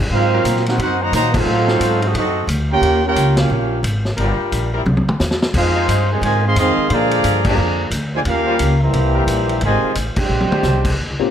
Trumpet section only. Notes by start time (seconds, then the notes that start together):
0.12 D#4 A#4 C5 F5
0.68 D#4 A#4 C5 F#5
0.82 D#4 A#4 C5 F#5
1.02 F#4 C5 D#5 A#5
1.14 F#4 C5 D#5 A#5
1.36 D#4 A4 C5 F5
2.05 C4 F#4 A4 D#5
2.17 C4 F#4 A4 D#5
2.72 F4 A#4 C#5 G5
3.06 F4 A#4 C#5 G5
3.38 C#4 G4 A#4 F5
5.56 D#4 G#4 C5 F5
6.12 F4 C5 D#5 G#5
6.24 F4 C5 D#5 G#5
6.46 G#4 D#5 F5 C6
6.59 G#4 D#5 F5 C6
6.93 G#4 D5 F5 A#5
7.47 G#4 D5 F5 A#5
8.15 F4 C5 D5 G#5
8.28 C#4 G4 A#4 F5
8.83 G4 C5 E5 A#5
9.65 F4 C5 D#5 G#5
10.19 F4 C5 D5 G5